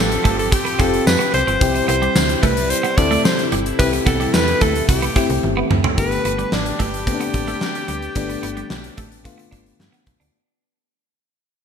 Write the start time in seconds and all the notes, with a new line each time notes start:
Already playing: A1 F3 C4 F4 G4 A4
0.12 closed hi-hat
0.24 G1 A3, kick, closed hi-hat
0.39 A4, closed hi-hat
0.52 G4, muted clean electric guitar stroke, kick, closed hi-hat
0.65 B3, closed hi-hat
0.79 F1 C4 F4 G4 A4, kick, closed hi-hat
0.94 closed hi-hat
1.07 F2 B4, snare, tambourine
1.19 B3, closed hi-hat
1.33 C2 C5, muted clean electric guitar stroke, closed hi-hat
1.47 G1 C4, closed hi-hat
1.61 C2 C3 G3 C4 E4 G4, kick, closed hi-hat
1.75 muted clean electric guitar stroke, closed hi-hat
1.88 C2 B3 C5, closed hi-hat
2.02 G3, closed hi-hat
2.16 D2, snare, tambourine
2.29 closed hi-hat
2.42 C2 A3 B4, kick, closed hi-hat
2.57 closed hi-hat
2.70 C5, closed hi-hat
2.83 B3, closed hi-hat
2.97 D2 C4 E4 A4 D5, muted clean electric guitar stroke, kick, closed hi-hat
3.11 A3, closed hi-hat
3.24 C5, snare, tambourine
3.39 closed hi-hat
3.52 G1 G3, closed hi-hat
3.66 closed hi-hat
3.78 C2 A3 C4 E4 G4 B4, kick, closed hi-hat
3.93 muted clean electric guitar stroke, closed hi-hat
4.06 C2 B3 A4, kick, closed hi-hat
4.20 G3, closed hi-hat
4.33 E2 B4, snare, tambourine
4.48 closed hi-hat
4.61 D2 A3 A4, kick, closed hi-hat
4.75 closed hi-hat
4.89 C2 G4, muted clean electric guitar stroke, kick, closed hi-hat
5.02 B3, closed hi-hat
5.16 C2 C4 E4 G4, kick, closed hi-hat
5.30 C2, closed hi-hat
5.43 G1, high tom
5.57 B3
5.70 D2, muted clean electric guitar stroke, mid tom
5.84 C4, floor tom
5.97 G1 D3 A3 B3 G4 B4 A5, kick, closed hi-hat
6.11 muted clean electric guitar stroke, closed hi-hat
6.25 G1 B3, closed hi-hat
6.39 G3, closed hi-hat
6.52 A1 D4, snare
6.66 closed hi-hat
6.79 G1 A3 G4, kick, closed hi-hat
6.94 closed hi-hat
7.07 D3 A3 B3 C4, kick, closed hi-hat
7.14 D4
7.21 B3, closed hi-hat
7.34 A1, muted clean electric guitar stroke, kick, closed hi-hat
7.48 A3, closed hi-hat
7.61 snare
7.75 closed hi-hat
7.88 D2 G3, closed hi-hat
8.02 closed hi-hat
8.15 G1 D3 A3 B3 D4, kick, closed hi-hat
8.30 muted clean electric guitar stroke, closed hi-hat
8.43 G1 B3, closed hi-hat
8.57 G3, closed hi-hat
8.70 B1, snare
8.84 closed hi-hat
8.98 A1 A3, kick, closed hi-hat
9.12 closed hi-hat
9.24 D3 A3 B3 F4, muted clean electric guitar stroke, kick, closed hi-hat
9.38 B3, closed hi-hat
9.51 G1 D4, kick, closed hi-hat
9.66 closed hi-hat
9.80 G2, snare
9.92 B3, closed hi-hat
10.07 B1, muted clean electric guitar stroke, kick, closed hi-hat
10.20 D2 D4, closed hi-hat